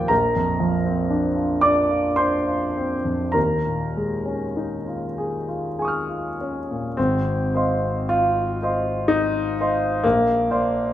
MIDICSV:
0, 0, Header, 1, 2, 480
1, 0, Start_track
1, 0, Tempo, 1013514
1, 49, Time_signature, 3, 2, 24, 8
1, 530, Tempo, 1077199
1, 1010, Tempo, 1156069
1, 1490, Tempo, 1207243
1, 2930, Tempo, 1127820
1, 3410, Tempo, 996678
1, 3890, Tempo, 941915
1, 4824, End_track
2, 0, Start_track
2, 0, Title_t, "Grand piano"
2, 0, Program_c, 0, 0
2, 0, Control_c, 0, 64, 127
2, 0, Note_on_c, 0, 39, 54
2, 0, Note_on_c, 0, 46, 39
2, 0, Note_on_c, 0, 53, 45
2, 0, Note_on_c, 0, 58, 41
2, 0, Note_on_c, 0, 67, 62
2, 0, Note_on_c, 0, 79, 76
2, 39, Note_on_c, 0, 82, 69
2, 46, Note_on_c, 0, 70, 58
2, 48, Note_off_c, 0, 79, 0
2, 50, Note_on_c, 0, 34, 51
2, 53, Note_off_c, 0, 58, 0
2, 58, Control_c, 0, 64, 0
2, 60, Note_off_c, 0, 39, 0
2, 61, Note_off_c, 0, 53, 0
2, 61, Note_off_c, 0, 67, 0
2, 62, Note_off_c, 0, 46, 0
2, 154, Control_c, 0, 64, 127
2, 171, Note_on_c, 0, 41, 37
2, 284, Note_on_c, 0, 53, 45
2, 362, Note_off_c, 0, 41, 0
2, 405, Note_on_c, 0, 60, 43
2, 479, Note_off_c, 0, 53, 0
2, 523, Note_on_c, 0, 62, 47
2, 596, Note_off_c, 0, 60, 0
2, 637, Note_on_c, 0, 65, 43
2, 712, Note_off_c, 0, 62, 0
2, 744, Note_off_c, 0, 70, 0
2, 751, Note_on_c, 0, 86, 73
2, 755, Note_on_c, 0, 74, 60
2, 758, Note_on_c, 0, 62, 45
2, 759, Note_off_c, 0, 82, 0
2, 832, Note_off_c, 0, 65, 0
2, 875, Note_on_c, 0, 65, 41
2, 957, Note_off_c, 0, 62, 0
2, 988, Note_off_c, 0, 74, 0
2, 994, Note_on_c, 0, 84, 73
2, 998, Note_on_c, 0, 72, 55
2, 1001, Note_on_c, 0, 62, 43
2, 1004, Note_off_c, 0, 86, 0
2, 1076, Note_off_c, 0, 65, 0
2, 1125, Note_on_c, 0, 65, 39
2, 1195, Note_off_c, 0, 62, 0
2, 1249, Note_on_c, 0, 60, 39
2, 1316, Note_off_c, 0, 65, 0
2, 1365, Note_on_c, 0, 41, 36
2, 1441, Note_off_c, 0, 60, 0
2, 1467, Note_off_c, 0, 72, 0
2, 1473, Note_off_c, 0, 34, 0
2, 1476, Note_on_c, 0, 82, 63
2, 1482, Note_off_c, 0, 84, 0
2, 1482, Note_on_c, 0, 70, 51
2, 1486, Note_on_c, 0, 39, 50
2, 1488, Note_off_c, 0, 41, 0
2, 1498, Control_c, 0, 64, 0
2, 1575, Control_c, 0, 64, 127
2, 1611, Note_on_c, 0, 46, 32
2, 1734, Note_on_c, 0, 56, 41
2, 1805, Note_off_c, 0, 46, 0
2, 1849, Note_on_c, 0, 61, 38
2, 1928, Note_off_c, 0, 56, 0
2, 1973, Note_on_c, 0, 63, 41
2, 2046, Note_off_c, 0, 61, 0
2, 2096, Note_on_c, 0, 65, 34
2, 2168, Note_off_c, 0, 63, 0
2, 2217, Note_on_c, 0, 68, 44
2, 2289, Note_off_c, 0, 65, 0
2, 2338, Note_on_c, 0, 65, 38
2, 2410, Note_off_c, 0, 68, 0
2, 2459, Note_on_c, 0, 68, 46
2, 2460, Note_on_c, 0, 80, 34
2, 2471, Note_on_c, 0, 85, 34
2, 2482, Note_on_c, 0, 87, 33
2, 2494, Note_on_c, 0, 89, 34
2, 2530, Note_off_c, 0, 65, 0
2, 2578, Note_on_c, 0, 65, 38
2, 2652, Note_off_c, 0, 68, 0
2, 2681, Note_off_c, 0, 70, 0
2, 2694, Note_off_c, 0, 82, 0
2, 2706, Note_on_c, 0, 61, 41
2, 2773, Note_off_c, 0, 65, 0
2, 2825, Note_on_c, 0, 46, 34
2, 2889, Note_off_c, 0, 61, 0
2, 2911, Note_off_c, 0, 39, 0
2, 2914, Note_off_c, 0, 80, 0
2, 2920, Note_off_c, 0, 85, 0
2, 2925, Note_off_c, 0, 87, 0
2, 2929, Note_on_c, 0, 60, 67
2, 2931, Note_off_c, 0, 89, 0
2, 2932, Note_off_c, 0, 46, 0
2, 2935, Control_c, 0, 64, 0
2, 2937, Note_on_c, 0, 32, 51
2, 3009, Control_c, 0, 64, 127
2, 3166, Note_off_c, 0, 32, 0
2, 3173, Note_on_c, 0, 72, 45
2, 3176, Note_on_c, 0, 75, 39
2, 3179, Note_on_c, 0, 77, 40
2, 3182, Note_on_c, 0, 84, 42
2, 3405, Note_on_c, 0, 65, 78
2, 3408, Note_off_c, 0, 60, 0
2, 3636, Note_off_c, 0, 72, 0
2, 3637, Note_off_c, 0, 75, 0
2, 3639, Note_off_c, 0, 77, 0
2, 3641, Note_off_c, 0, 84, 0
2, 3662, Note_on_c, 0, 72, 41
2, 3665, Note_on_c, 0, 75, 43
2, 3666, Note_on_c, 0, 77, 39
2, 3669, Note_on_c, 0, 84, 45
2, 3881, Note_on_c, 0, 63, 85
2, 3886, Note_off_c, 0, 65, 0
2, 4119, Note_off_c, 0, 72, 0
2, 4120, Note_off_c, 0, 75, 0
2, 4121, Note_off_c, 0, 77, 0
2, 4123, Note_off_c, 0, 84, 0
2, 4148, Note_on_c, 0, 72, 41
2, 4149, Note_on_c, 0, 75, 46
2, 4151, Note_on_c, 0, 77, 45
2, 4152, Note_on_c, 0, 84, 48
2, 4359, Note_off_c, 0, 72, 0
2, 4360, Note_off_c, 0, 75, 0
2, 4360, Note_off_c, 0, 77, 0
2, 4361, Note_off_c, 0, 84, 0
2, 4368, Note_on_c, 0, 58, 83
2, 4369, Note_off_c, 0, 63, 0
2, 4379, Control_c, 0, 64, 0
2, 4379, Note_on_c, 0, 34, 53
2, 4471, Control_c, 0, 64, 127
2, 4603, Note_off_c, 0, 34, 0
2, 4608, Note_on_c, 0, 72, 46
2, 4608, Note_on_c, 0, 74, 44
2, 4611, Note_on_c, 0, 77, 45
2, 4613, Note_on_c, 0, 84, 46
2, 4824, Note_off_c, 0, 58, 0
2, 4824, Note_off_c, 0, 72, 0
2, 4824, Note_off_c, 0, 74, 0
2, 4824, Note_off_c, 0, 77, 0
2, 4824, Note_off_c, 0, 84, 0
2, 4824, End_track
0, 0, End_of_file